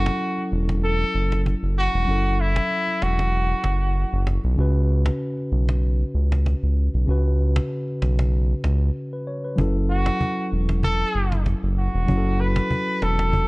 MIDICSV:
0, 0, Header, 1, 5, 480
1, 0, Start_track
1, 0, Key_signature, 3, "minor"
1, 0, Tempo, 625000
1, 1601, Time_signature, 4, 2, 24, 8
1, 10352, End_track
2, 0, Start_track
2, 0, Title_t, "Trumpet"
2, 0, Program_c, 0, 56
2, 0, Note_on_c, 0, 66, 107
2, 373, Note_off_c, 0, 66, 0
2, 647, Note_on_c, 0, 69, 110
2, 1093, Note_off_c, 0, 69, 0
2, 1368, Note_on_c, 0, 66, 109
2, 1847, Note_on_c, 0, 64, 103
2, 1858, Note_off_c, 0, 66, 0
2, 2326, Note_on_c, 0, 66, 98
2, 2338, Note_off_c, 0, 64, 0
2, 3283, Note_off_c, 0, 66, 0
2, 7605, Note_on_c, 0, 66, 112
2, 8052, Note_off_c, 0, 66, 0
2, 8326, Note_on_c, 0, 69, 112
2, 8772, Note_off_c, 0, 69, 0
2, 9046, Note_on_c, 0, 66, 97
2, 9526, Note_on_c, 0, 71, 112
2, 9538, Note_off_c, 0, 66, 0
2, 10008, Note_on_c, 0, 69, 100
2, 10020, Note_off_c, 0, 71, 0
2, 10352, Note_off_c, 0, 69, 0
2, 10352, End_track
3, 0, Start_track
3, 0, Title_t, "Tine electric piano"
3, 0, Program_c, 1, 4
3, 0, Control_c, 1, 64, 127
3, 0, Note_on_c, 1, 54, 79
3, 0, Note_on_c, 1, 61, 70
3, 0, Note_on_c, 1, 64, 75
3, 0, Note_on_c, 1, 69, 88
3, 1560, Note_off_c, 1, 54, 0
3, 1566, Note_off_c, 1, 61, 0
3, 1573, Note_off_c, 1, 64, 0
3, 1579, Note_off_c, 1, 69, 0
3, 1580, Note_on_c, 1, 54, 68
3, 1592, Note_on_c, 1, 61, 61
3, 1606, Note_on_c, 1, 64, 61
3, 1618, Note_on_c, 1, 69, 72
3, 3480, Note_off_c, 1, 54, 0
3, 3486, Note_off_c, 1, 61, 0
3, 3492, Note_off_c, 1, 64, 0
3, 3499, Note_off_c, 1, 69, 0
3, 3501, Note_on_c, 1, 49, 80
3, 3513, Note_on_c, 1, 61, 75
3, 3526, Note_on_c, 1, 66, 72
3, 3531, Control_c, 1, 64, 0
3, 3539, Note_on_c, 1, 71, 89
3, 3656, Control_c, 1, 64, 127
3, 5400, Note_off_c, 1, 49, 0
3, 5406, Note_off_c, 1, 61, 0
3, 5413, Note_off_c, 1, 66, 0
3, 5419, Note_off_c, 1, 71, 0
3, 5420, Note_on_c, 1, 49, 83
3, 5433, Note_on_c, 1, 61, 74
3, 5447, Note_on_c, 1, 66, 70
3, 5459, Note_on_c, 1, 71, 87
3, 6861, Note_off_c, 1, 71, 0
3, 7012, Note_on_c, 1, 71, 63
3, 7115, Note_off_c, 1, 71, 0
3, 7121, Note_on_c, 1, 73, 68
3, 7246, Note_off_c, 1, 73, 0
3, 7253, Note_on_c, 1, 71, 65
3, 7320, Note_off_c, 1, 49, 0
3, 7326, Note_off_c, 1, 61, 0
3, 7333, Note_off_c, 1, 66, 0
3, 7340, Note_on_c, 1, 54, 79
3, 7353, Note_on_c, 1, 61, 74
3, 7366, Note_on_c, 1, 64, 71
3, 7369, Control_c, 1, 64, 0
3, 7379, Note_on_c, 1, 69, 86
3, 7481, Note_off_c, 1, 71, 0
3, 7509, Control_c, 1, 64, 127
3, 9240, Note_off_c, 1, 54, 0
3, 9246, Note_off_c, 1, 61, 0
3, 9252, Note_off_c, 1, 64, 0
3, 9259, Note_off_c, 1, 69, 0
3, 9262, Note_on_c, 1, 54, 68
3, 9274, Note_on_c, 1, 61, 64
3, 9287, Note_on_c, 1, 64, 63
3, 9300, Note_on_c, 1, 66, 60
3, 9345, Note_off_c, 1, 66, 0
3, 9350, Note_on_c, 1, 69, 75
3, 10352, Note_off_c, 1, 54, 0
3, 10352, Note_off_c, 1, 61, 0
3, 10352, Note_off_c, 1, 64, 0
3, 10352, Note_off_c, 1, 69, 0
3, 10352, End_track
4, 0, Start_track
4, 0, Title_t, "Analog synth bass"
4, 0, Program_c, 2, 38
4, 0, Note_on_c, 2, 30, 114
4, 80, Note_off_c, 2, 30, 0
4, 400, Note_on_c, 2, 28, 94
4, 800, Note_off_c, 2, 28, 0
4, 880, Note_on_c, 2, 30, 92
4, 1190, Note_off_c, 2, 30, 0
4, 1251, Note_on_c, 2, 30, 82
4, 1451, Note_off_c, 2, 30, 0
4, 1491, Note_on_c, 2, 28, 101
4, 1581, Note_off_c, 2, 28, 0
4, 1600, Note_on_c, 2, 30, 109
4, 2000, Note_off_c, 2, 30, 0
4, 2320, Note_on_c, 2, 28, 92
4, 2720, Note_off_c, 2, 28, 0
4, 2798, Note_on_c, 2, 30, 94
4, 3109, Note_off_c, 2, 30, 0
4, 3170, Note_on_c, 2, 30, 93
4, 3371, Note_off_c, 2, 30, 0
4, 3411, Note_on_c, 2, 35, 88
4, 3501, Note_off_c, 2, 35, 0
4, 3519, Note_on_c, 2, 37, 109
4, 3919, Note_off_c, 2, 37, 0
4, 4239, Note_on_c, 2, 35, 95
4, 4639, Note_off_c, 2, 35, 0
4, 4719, Note_on_c, 2, 37, 98
4, 5029, Note_off_c, 2, 37, 0
4, 5092, Note_on_c, 2, 37, 86
4, 5292, Note_off_c, 2, 37, 0
4, 5332, Note_on_c, 2, 35, 96
4, 5422, Note_off_c, 2, 35, 0
4, 5440, Note_on_c, 2, 37, 117
4, 5840, Note_off_c, 2, 37, 0
4, 6161, Note_on_c, 2, 35, 92
4, 6560, Note_off_c, 2, 35, 0
4, 6641, Note_on_c, 2, 37, 89
4, 6841, Note_off_c, 2, 37, 0
4, 7360, Note_on_c, 2, 30, 112
4, 7760, Note_off_c, 2, 30, 0
4, 8081, Note_on_c, 2, 28, 93
4, 8481, Note_off_c, 2, 28, 0
4, 8561, Note_on_c, 2, 30, 92
4, 8870, Note_off_c, 2, 30, 0
4, 8932, Note_on_c, 2, 30, 86
4, 9132, Note_off_c, 2, 30, 0
4, 9172, Note_on_c, 2, 28, 96
4, 9262, Note_off_c, 2, 28, 0
4, 9281, Note_on_c, 2, 30, 108
4, 9680, Note_off_c, 2, 30, 0
4, 10001, Note_on_c, 2, 28, 93
4, 10352, Note_off_c, 2, 28, 0
4, 10352, End_track
5, 0, Start_track
5, 0, Title_t, "Cajon"
5, 47, Note_on_c, 9, 38, 108
5, 124, Note_off_c, 9, 38, 0
5, 159, Note_on_c, 9, 38, 34
5, 236, Note_off_c, 9, 38, 0
5, 290, Note_on_c, 9, 38, 30
5, 367, Note_off_c, 9, 38, 0
5, 402, Note_on_c, 9, 38, 29
5, 478, Note_off_c, 9, 38, 0
5, 530, Note_on_c, 9, 38, 96
5, 606, Note_off_c, 9, 38, 0
5, 640, Note_on_c, 9, 38, 36
5, 717, Note_off_c, 9, 38, 0
5, 774, Note_on_c, 9, 38, 30
5, 850, Note_off_c, 9, 38, 0
5, 1014, Note_on_c, 9, 38, 94
5, 1091, Note_off_c, 9, 38, 0
5, 1122, Note_on_c, 9, 38, 76
5, 1199, Note_off_c, 9, 38, 0
5, 1251, Note_on_c, 9, 38, 28
5, 1328, Note_off_c, 9, 38, 0
5, 1358, Note_on_c, 9, 38, 28
5, 1434, Note_off_c, 9, 38, 0
5, 1491, Note_on_c, 9, 38, 31
5, 1568, Note_off_c, 9, 38, 0
5, 1600, Note_on_c, 9, 38, 32
5, 1677, Note_off_c, 9, 38, 0
5, 1841, Note_on_c, 9, 38, 30
5, 1918, Note_off_c, 9, 38, 0
5, 1966, Note_on_c, 9, 38, 105
5, 2043, Note_off_c, 9, 38, 0
5, 2079, Note_on_c, 9, 38, 35
5, 2156, Note_off_c, 9, 38, 0
5, 2209, Note_on_c, 9, 38, 32
5, 2286, Note_off_c, 9, 38, 0
5, 2319, Note_on_c, 9, 38, 94
5, 2396, Note_off_c, 9, 38, 0
5, 2450, Note_on_c, 9, 38, 98
5, 2526, Note_off_c, 9, 38, 0
5, 2558, Note_on_c, 9, 38, 37
5, 2635, Note_off_c, 9, 38, 0
5, 2692, Note_on_c, 9, 38, 29
5, 2769, Note_off_c, 9, 38, 0
5, 2794, Note_on_c, 9, 38, 99
5, 2870, Note_off_c, 9, 38, 0
5, 2927, Note_on_c, 9, 38, 26
5, 3004, Note_off_c, 9, 38, 0
5, 3035, Note_on_c, 9, 38, 37
5, 3112, Note_off_c, 9, 38, 0
5, 3169, Note_on_c, 9, 38, 28
5, 3246, Note_off_c, 9, 38, 0
5, 3278, Note_on_c, 9, 38, 88
5, 3355, Note_off_c, 9, 38, 0
5, 3409, Note_on_c, 9, 38, 31
5, 3485, Note_off_c, 9, 38, 0
5, 3518, Note_on_c, 9, 38, 32
5, 3595, Note_off_c, 9, 38, 0
5, 3645, Note_on_c, 9, 38, 24
5, 3722, Note_off_c, 9, 38, 0
5, 3758, Note_on_c, 9, 38, 31
5, 3835, Note_off_c, 9, 38, 0
5, 3884, Note_on_c, 9, 38, 103
5, 3961, Note_off_c, 9, 38, 0
5, 3996, Note_on_c, 9, 38, 35
5, 4073, Note_off_c, 9, 38, 0
5, 4127, Note_on_c, 9, 38, 30
5, 4204, Note_off_c, 9, 38, 0
5, 4240, Note_on_c, 9, 38, 31
5, 4317, Note_off_c, 9, 38, 0
5, 4367, Note_on_c, 9, 38, 97
5, 4444, Note_off_c, 9, 38, 0
5, 4478, Note_on_c, 9, 38, 37
5, 4554, Note_off_c, 9, 38, 0
5, 4612, Note_on_c, 9, 38, 29
5, 4689, Note_off_c, 9, 38, 0
5, 4854, Note_on_c, 9, 38, 93
5, 4931, Note_off_c, 9, 38, 0
5, 4962, Note_on_c, 9, 38, 79
5, 5039, Note_off_c, 9, 38, 0
5, 5091, Note_on_c, 9, 38, 27
5, 5168, Note_off_c, 9, 38, 0
5, 5198, Note_on_c, 9, 38, 29
5, 5275, Note_off_c, 9, 38, 0
5, 5331, Note_on_c, 9, 38, 34
5, 5408, Note_off_c, 9, 38, 0
5, 5440, Note_on_c, 9, 38, 31
5, 5517, Note_off_c, 9, 38, 0
5, 5567, Note_on_c, 9, 38, 22
5, 5644, Note_off_c, 9, 38, 0
5, 5681, Note_on_c, 9, 38, 31
5, 5758, Note_off_c, 9, 38, 0
5, 5806, Note_on_c, 9, 38, 108
5, 5883, Note_off_c, 9, 38, 0
5, 5918, Note_on_c, 9, 38, 34
5, 5995, Note_off_c, 9, 38, 0
5, 6051, Note_on_c, 9, 38, 30
5, 6127, Note_off_c, 9, 38, 0
5, 6160, Note_on_c, 9, 38, 92
5, 6237, Note_off_c, 9, 38, 0
5, 6289, Note_on_c, 9, 38, 97
5, 6366, Note_off_c, 9, 38, 0
5, 6399, Note_on_c, 9, 38, 37
5, 6476, Note_off_c, 9, 38, 0
5, 6533, Note_on_c, 9, 38, 29
5, 6610, Note_off_c, 9, 38, 0
5, 6635, Note_on_c, 9, 38, 98
5, 6712, Note_off_c, 9, 38, 0
5, 6768, Note_on_c, 9, 38, 27
5, 6844, Note_off_c, 9, 38, 0
5, 7360, Note_on_c, 9, 36, 104
5, 7437, Note_off_c, 9, 36, 0
5, 7488, Note_on_c, 9, 38, 24
5, 7565, Note_off_c, 9, 38, 0
5, 7601, Note_on_c, 9, 38, 32
5, 7678, Note_off_c, 9, 38, 0
5, 7726, Note_on_c, 9, 38, 110
5, 7803, Note_off_c, 9, 38, 0
5, 7838, Note_on_c, 9, 36, 82
5, 7915, Note_off_c, 9, 36, 0
5, 7969, Note_on_c, 9, 38, 30
5, 8046, Note_off_c, 9, 38, 0
5, 8080, Note_on_c, 9, 38, 31
5, 8157, Note_off_c, 9, 38, 0
5, 8209, Note_on_c, 9, 38, 97
5, 8286, Note_off_c, 9, 38, 0
5, 8320, Note_on_c, 9, 36, 107
5, 8397, Note_off_c, 9, 36, 0
5, 8694, Note_on_c, 9, 38, 94
5, 8771, Note_off_c, 9, 38, 0
5, 8800, Note_on_c, 9, 36, 94
5, 8801, Note_on_c, 9, 38, 78
5, 8877, Note_off_c, 9, 36, 0
5, 8878, Note_off_c, 9, 38, 0
5, 8930, Note_on_c, 9, 38, 28
5, 9007, Note_off_c, 9, 38, 0
5, 9037, Note_on_c, 9, 38, 29
5, 9114, Note_off_c, 9, 38, 0
5, 9171, Note_on_c, 9, 38, 31
5, 9248, Note_off_c, 9, 38, 0
5, 9280, Note_on_c, 9, 36, 103
5, 9357, Note_off_c, 9, 36, 0
5, 9408, Note_on_c, 9, 38, 24
5, 9485, Note_off_c, 9, 38, 0
5, 9522, Note_on_c, 9, 38, 32
5, 9598, Note_off_c, 9, 38, 0
5, 9646, Note_on_c, 9, 38, 113
5, 9722, Note_off_c, 9, 38, 0
5, 9758, Note_on_c, 9, 36, 83
5, 9835, Note_off_c, 9, 36, 0
5, 9890, Note_on_c, 9, 38, 32
5, 9966, Note_off_c, 9, 38, 0
5, 10000, Note_on_c, 9, 38, 92
5, 10076, Note_off_c, 9, 38, 0
5, 10129, Note_on_c, 9, 38, 96
5, 10206, Note_off_c, 9, 38, 0
5, 10240, Note_on_c, 9, 36, 112
5, 10317, Note_off_c, 9, 36, 0
5, 10352, End_track
0, 0, End_of_file